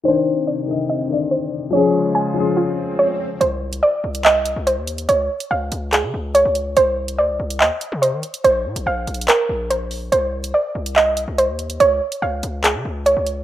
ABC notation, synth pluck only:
X:1
M:4/4
L:1/8
Q:1/4=143
K:Cm
V:1 name="Synth pluck"
c2 d2 e2 c2 | _d2 a2 F2 d2 | c2 d2 e2 c2 | _d2 f2 A2 d2 |
c2 d2 e2 c2 | c2 f2 B2 c2 | c2 d2 e2 c2 | _d2 f2 A2 d2 |]